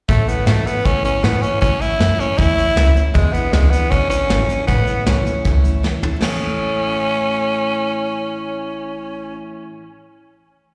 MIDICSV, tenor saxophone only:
0, 0, Header, 1, 2, 480
1, 0, Start_track
1, 0, Key_signature, 3, "major"
1, 0, Tempo, 384123
1, 109, Time_signature, 4, 2, 24, 8
1, 13424, End_track
2, 0, Start_track
2, 0, Title_t, "Tenor saxophone"
2, 0, Program_c, 0, 66
2, 109, Note_on_c, 0, 57, 99
2, 355, Note_on_c, 0, 59, 87
2, 374, Note_off_c, 0, 57, 0
2, 590, Note_off_c, 0, 59, 0
2, 596, Note_on_c, 0, 57, 89
2, 834, Note_on_c, 0, 59, 90
2, 853, Note_off_c, 0, 57, 0
2, 1067, Note_on_c, 0, 61, 99
2, 1086, Note_off_c, 0, 59, 0
2, 1301, Note_off_c, 0, 61, 0
2, 1309, Note_on_c, 0, 61, 98
2, 1543, Note_on_c, 0, 59, 94
2, 1562, Note_off_c, 0, 61, 0
2, 1772, Note_on_c, 0, 61, 97
2, 1790, Note_off_c, 0, 59, 0
2, 2006, Note_off_c, 0, 61, 0
2, 2013, Note_on_c, 0, 61, 112
2, 2261, Note_on_c, 0, 64, 108
2, 2279, Note_off_c, 0, 61, 0
2, 2749, Note_on_c, 0, 61, 102
2, 2767, Note_off_c, 0, 64, 0
2, 2973, Note_on_c, 0, 64, 118
2, 2991, Note_off_c, 0, 61, 0
2, 3692, Note_off_c, 0, 64, 0
2, 3925, Note_on_c, 0, 56, 92
2, 4162, Note_on_c, 0, 59, 83
2, 4181, Note_off_c, 0, 56, 0
2, 4411, Note_on_c, 0, 56, 87
2, 4430, Note_off_c, 0, 59, 0
2, 4636, Note_on_c, 0, 59, 92
2, 4655, Note_off_c, 0, 56, 0
2, 4877, Note_on_c, 0, 61, 100
2, 4895, Note_off_c, 0, 59, 0
2, 5116, Note_off_c, 0, 61, 0
2, 5123, Note_on_c, 0, 61, 103
2, 5798, Note_off_c, 0, 61, 0
2, 5841, Note_on_c, 0, 59, 92
2, 6293, Note_off_c, 0, 59, 0
2, 6330, Note_on_c, 0, 61, 77
2, 6778, Note_off_c, 0, 61, 0
2, 7779, Note_on_c, 0, 61, 94
2, 11696, Note_off_c, 0, 61, 0
2, 13424, End_track
0, 0, End_of_file